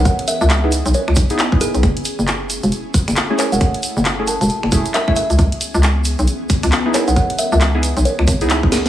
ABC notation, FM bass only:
X:1
M:4/4
L:1/16
Q:"Swing 16ths" 1/4=135
K:F#dor
V:1 name="FM bass" clef=bass
z3 C,,4 B,,, z C,, B,,, z4 B,,, | F,,, z2 F,,,4 E,,, z3 F,,, z3 E,,, | z3 F,,,4 E,,, z F,,, E,,, z4 C,, | C,, z2 C,,4 B,,, z3 C,, z3 B,,, |
z3 C,,4 B,,, z C,, G,,, C,,4- C,, |]